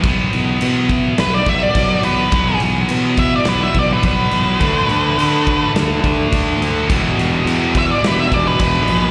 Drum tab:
CC |xxxxxxxx|xxxxxxxx|xxxxxxxx|xxxxxxxx|
SD |----o---|----o---|----o---|-o--o---|
BD |o--o-oo-|o--o-oo-|o--o-oo-|o--o-oo-|